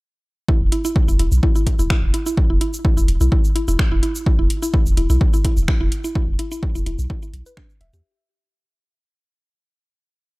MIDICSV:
0, 0, Header, 1, 4, 480
1, 0, Start_track
1, 0, Tempo, 472441
1, 493, Time_signature, 4, 2, 24, 8
1, 10556, End_track
2, 0, Start_track
2, 0, Title_t, "Synth arpeggio sound"
2, 0, Program_c, 0, 84
2, 493, Note_on_c, 0, 64, 85
2, 538, Note_off_c, 0, 64, 0
2, 733, Note_on_c, 0, 64, 76
2, 778, Note_off_c, 0, 64, 0
2, 861, Note_on_c, 0, 64, 81
2, 901, Note_off_c, 0, 64, 0
2, 1100, Note_on_c, 0, 64, 78
2, 1140, Note_off_c, 0, 64, 0
2, 1213, Note_on_c, 0, 64, 78
2, 1259, Note_off_c, 0, 64, 0
2, 1452, Note_on_c, 0, 64, 84
2, 1498, Note_off_c, 0, 64, 0
2, 1579, Note_on_c, 0, 64, 77
2, 1620, Note_off_c, 0, 64, 0
2, 1820, Note_on_c, 0, 64, 77
2, 1860, Note_off_c, 0, 64, 0
2, 1933, Note_on_c, 0, 64, 86
2, 1978, Note_off_c, 0, 64, 0
2, 2173, Note_on_c, 0, 64, 77
2, 2218, Note_off_c, 0, 64, 0
2, 2300, Note_on_c, 0, 64, 76
2, 2340, Note_off_c, 0, 64, 0
2, 2539, Note_on_c, 0, 64, 74
2, 2580, Note_off_c, 0, 64, 0
2, 2652, Note_on_c, 0, 64, 78
2, 2698, Note_off_c, 0, 64, 0
2, 2892, Note_on_c, 0, 64, 81
2, 2938, Note_off_c, 0, 64, 0
2, 3019, Note_on_c, 0, 64, 76
2, 3060, Note_off_c, 0, 64, 0
2, 3260, Note_on_c, 0, 64, 73
2, 3300, Note_off_c, 0, 64, 0
2, 3371, Note_on_c, 0, 64, 82
2, 3417, Note_off_c, 0, 64, 0
2, 3612, Note_on_c, 0, 64, 75
2, 3658, Note_off_c, 0, 64, 0
2, 3740, Note_on_c, 0, 64, 81
2, 3780, Note_off_c, 0, 64, 0
2, 3980, Note_on_c, 0, 64, 76
2, 4020, Note_off_c, 0, 64, 0
2, 4091, Note_on_c, 0, 64, 77
2, 4137, Note_off_c, 0, 64, 0
2, 4331, Note_on_c, 0, 64, 84
2, 4377, Note_off_c, 0, 64, 0
2, 4458, Note_on_c, 0, 64, 75
2, 4499, Note_off_c, 0, 64, 0
2, 4698, Note_on_c, 0, 64, 80
2, 4739, Note_off_c, 0, 64, 0
2, 4812, Note_on_c, 0, 64, 81
2, 4858, Note_off_c, 0, 64, 0
2, 5052, Note_on_c, 0, 64, 78
2, 5098, Note_off_c, 0, 64, 0
2, 5180, Note_on_c, 0, 64, 75
2, 5220, Note_off_c, 0, 64, 0
2, 5420, Note_on_c, 0, 64, 78
2, 5460, Note_off_c, 0, 64, 0
2, 5533, Note_on_c, 0, 64, 77
2, 5578, Note_off_c, 0, 64, 0
2, 5773, Note_on_c, 0, 64, 82
2, 5818, Note_off_c, 0, 64, 0
2, 5900, Note_on_c, 0, 64, 76
2, 5940, Note_off_c, 0, 64, 0
2, 6140, Note_on_c, 0, 64, 75
2, 6180, Note_off_c, 0, 64, 0
2, 6252, Note_on_c, 0, 64, 87
2, 6298, Note_off_c, 0, 64, 0
2, 6493, Note_on_c, 0, 64, 77
2, 6538, Note_off_c, 0, 64, 0
2, 6620, Note_on_c, 0, 64, 83
2, 6660, Note_off_c, 0, 64, 0
2, 6861, Note_on_c, 0, 64, 74
2, 6901, Note_off_c, 0, 64, 0
2, 6973, Note_on_c, 0, 64, 77
2, 7018, Note_off_c, 0, 64, 0
2, 7212, Note_on_c, 0, 64, 84
2, 7258, Note_off_c, 0, 64, 0
2, 7341, Note_on_c, 0, 64, 77
2, 7381, Note_off_c, 0, 64, 0
2, 7582, Note_on_c, 0, 71, 80
2, 7641, Note_off_c, 0, 71, 0
2, 7694, Note_on_c, 0, 62, 103
2, 7739, Note_off_c, 0, 62, 0
2, 7934, Note_on_c, 0, 76, 108
2, 8001, Note_off_c, 0, 76, 0
2, 8062, Note_on_c, 0, 67, 77
2, 8121, Note_off_c, 0, 67, 0
2, 10556, End_track
3, 0, Start_track
3, 0, Title_t, "Sub bass"
3, 0, Program_c, 1, 38
3, 619, Note_on_c, 1, 28, 104
3, 703, Note_off_c, 1, 28, 0
3, 1099, Note_on_c, 1, 28, 83
3, 1183, Note_off_c, 1, 28, 0
3, 1211, Note_on_c, 1, 28, 89
3, 1306, Note_off_c, 1, 28, 0
3, 1339, Note_on_c, 1, 35, 100
3, 1423, Note_off_c, 1, 35, 0
3, 1819, Note_on_c, 1, 28, 88
3, 1903, Note_off_c, 1, 28, 0
3, 2059, Note_on_c, 1, 28, 104
3, 2143, Note_off_c, 1, 28, 0
3, 2539, Note_on_c, 1, 28, 103
3, 2623, Note_off_c, 1, 28, 0
3, 3019, Note_on_c, 1, 28, 85
3, 3103, Note_off_c, 1, 28, 0
3, 3132, Note_on_c, 1, 28, 85
3, 3227, Note_off_c, 1, 28, 0
3, 3258, Note_on_c, 1, 35, 102
3, 3343, Note_off_c, 1, 35, 0
3, 3739, Note_on_c, 1, 28, 87
3, 3823, Note_off_c, 1, 28, 0
3, 3979, Note_on_c, 1, 28, 105
3, 4063, Note_off_c, 1, 28, 0
3, 4459, Note_on_c, 1, 28, 106
3, 4543, Note_off_c, 1, 28, 0
3, 4940, Note_on_c, 1, 28, 83
3, 5023, Note_off_c, 1, 28, 0
3, 5052, Note_on_c, 1, 28, 84
3, 5147, Note_off_c, 1, 28, 0
3, 5180, Note_on_c, 1, 35, 102
3, 5263, Note_off_c, 1, 35, 0
3, 5660, Note_on_c, 1, 28, 86
3, 5743, Note_off_c, 1, 28, 0
3, 5900, Note_on_c, 1, 28, 105
3, 5984, Note_off_c, 1, 28, 0
3, 6380, Note_on_c, 1, 28, 102
3, 6464, Note_off_c, 1, 28, 0
3, 6860, Note_on_c, 1, 28, 84
3, 6943, Note_off_c, 1, 28, 0
3, 6973, Note_on_c, 1, 28, 90
3, 7067, Note_off_c, 1, 28, 0
3, 7099, Note_on_c, 1, 35, 101
3, 7183, Note_off_c, 1, 35, 0
3, 7452, Note_on_c, 1, 35, 77
3, 7547, Note_off_c, 1, 35, 0
3, 7932, Note_on_c, 1, 28, 92
3, 8027, Note_off_c, 1, 28, 0
3, 8060, Note_on_c, 1, 40, 89
3, 8143, Note_off_c, 1, 40, 0
3, 10556, End_track
4, 0, Start_track
4, 0, Title_t, "Drums"
4, 492, Note_on_c, 9, 36, 120
4, 594, Note_off_c, 9, 36, 0
4, 733, Note_on_c, 9, 42, 98
4, 834, Note_off_c, 9, 42, 0
4, 861, Note_on_c, 9, 69, 55
4, 963, Note_off_c, 9, 69, 0
4, 973, Note_on_c, 9, 36, 126
4, 1074, Note_off_c, 9, 36, 0
4, 1101, Note_on_c, 9, 69, 46
4, 1203, Note_off_c, 9, 69, 0
4, 1213, Note_on_c, 9, 42, 91
4, 1315, Note_off_c, 9, 42, 0
4, 1341, Note_on_c, 9, 69, 52
4, 1442, Note_off_c, 9, 69, 0
4, 1452, Note_on_c, 9, 36, 115
4, 1554, Note_off_c, 9, 36, 0
4, 1581, Note_on_c, 9, 69, 45
4, 1682, Note_off_c, 9, 69, 0
4, 1692, Note_on_c, 9, 36, 60
4, 1693, Note_on_c, 9, 42, 93
4, 1794, Note_off_c, 9, 36, 0
4, 1795, Note_off_c, 9, 42, 0
4, 1820, Note_on_c, 9, 69, 52
4, 1922, Note_off_c, 9, 69, 0
4, 1932, Note_on_c, 9, 26, 108
4, 1932, Note_on_c, 9, 36, 115
4, 2034, Note_off_c, 9, 26, 0
4, 2034, Note_off_c, 9, 36, 0
4, 2173, Note_on_c, 9, 42, 93
4, 2274, Note_off_c, 9, 42, 0
4, 2300, Note_on_c, 9, 69, 55
4, 2401, Note_off_c, 9, 69, 0
4, 2412, Note_on_c, 9, 36, 122
4, 2514, Note_off_c, 9, 36, 0
4, 2652, Note_on_c, 9, 42, 98
4, 2754, Note_off_c, 9, 42, 0
4, 2780, Note_on_c, 9, 69, 55
4, 2882, Note_off_c, 9, 69, 0
4, 2892, Note_on_c, 9, 36, 127
4, 2994, Note_off_c, 9, 36, 0
4, 3021, Note_on_c, 9, 69, 45
4, 3123, Note_off_c, 9, 69, 0
4, 3133, Note_on_c, 9, 42, 94
4, 3234, Note_off_c, 9, 42, 0
4, 3260, Note_on_c, 9, 69, 52
4, 3362, Note_off_c, 9, 69, 0
4, 3372, Note_on_c, 9, 36, 127
4, 3474, Note_off_c, 9, 36, 0
4, 3501, Note_on_c, 9, 69, 43
4, 3603, Note_off_c, 9, 69, 0
4, 3613, Note_on_c, 9, 42, 98
4, 3715, Note_off_c, 9, 42, 0
4, 3740, Note_on_c, 9, 69, 50
4, 3842, Note_off_c, 9, 69, 0
4, 3852, Note_on_c, 9, 36, 122
4, 3853, Note_on_c, 9, 26, 112
4, 3953, Note_off_c, 9, 36, 0
4, 3955, Note_off_c, 9, 26, 0
4, 4093, Note_on_c, 9, 42, 93
4, 4195, Note_off_c, 9, 42, 0
4, 4220, Note_on_c, 9, 69, 54
4, 4322, Note_off_c, 9, 69, 0
4, 4332, Note_on_c, 9, 36, 125
4, 4434, Note_off_c, 9, 36, 0
4, 4573, Note_on_c, 9, 42, 104
4, 4675, Note_off_c, 9, 42, 0
4, 4701, Note_on_c, 9, 69, 54
4, 4802, Note_off_c, 9, 69, 0
4, 4812, Note_on_c, 9, 36, 127
4, 4914, Note_off_c, 9, 36, 0
4, 4941, Note_on_c, 9, 69, 43
4, 5042, Note_off_c, 9, 69, 0
4, 5053, Note_on_c, 9, 42, 97
4, 5154, Note_off_c, 9, 42, 0
4, 5180, Note_on_c, 9, 69, 50
4, 5282, Note_off_c, 9, 69, 0
4, 5292, Note_on_c, 9, 36, 127
4, 5394, Note_off_c, 9, 36, 0
4, 5420, Note_on_c, 9, 69, 42
4, 5522, Note_off_c, 9, 69, 0
4, 5532, Note_on_c, 9, 36, 66
4, 5533, Note_on_c, 9, 42, 97
4, 5634, Note_off_c, 9, 36, 0
4, 5634, Note_off_c, 9, 42, 0
4, 5660, Note_on_c, 9, 69, 49
4, 5762, Note_off_c, 9, 69, 0
4, 5772, Note_on_c, 9, 26, 106
4, 5773, Note_on_c, 9, 36, 127
4, 5874, Note_off_c, 9, 26, 0
4, 5874, Note_off_c, 9, 36, 0
4, 6013, Note_on_c, 9, 42, 96
4, 6115, Note_off_c, 9, 42, 0
4, 6140, Note_on_c, 9, 69, 52
4, 6242, Note_off_c, 9, 69, 0
4, 6253, Note_on_c, 9, 36, 127
4, 6354, Note_off_c, 9, 36, 0
4, 6492, Note_on_c, 9, 42, 101
4, 6594, Note_off_c, 9, 42, 0
4, 6620, Note_on_c, 9, 69, 52
4, 6722, Note_off_c, 9, 69, 0
4, 6733, Note_on_c, 9, 36, 127
4, 6834, Note_off_c, 9, 36, 0
4, 6861, Note_on_c, 9, 69, 44
4, 6963, Note_off_c, 9, 69, 0
4, 6973, Note_on_c, 9, 42, 100
4, 7075, Note_off_c, 9, 42, 0
4, 7101, Note_on_c, 9, 69, 50
4, 7202, Note_off_c, 9, 69, 0
4, 7213, Note_on_c, 9, 36, 127
4, 7314, Note_off_c, 9, 36, 0
4, 7341, Note_on_c, 9, 69, 41
4, 7442, Note_off_c, 9, 69, 0
4, 7453, Note_on_c, 9, 42, 95
4, 7554, Note_off_c, 9, 42, 0
4, 7580, Note_on_c, 9, 69, 47
4, 7682, Note_off_c, 9, 69, 0
4, 7692, Note_on_c, 9, 26, 105
4, 7693, Note_on_c, 9, 36, 127
4, 7794, Note_off_c, 9, 26, 0
4, 7794, Note_off_c, 9, 36, 0
4, 7820, Note_on_c, 9, 69, 27
4, 7922, Note_off_c, 9, 69, 0
4, 7932, Note_on_c, 9, 42, 94
4, 8034, Note_off_c, 9, 42, 0
4, 8060, Note_on_c, 9, 69, 50
4, 8162, Note_off_c, 9, 69, 0
4, 10556, End_track
0, 0, End_of_file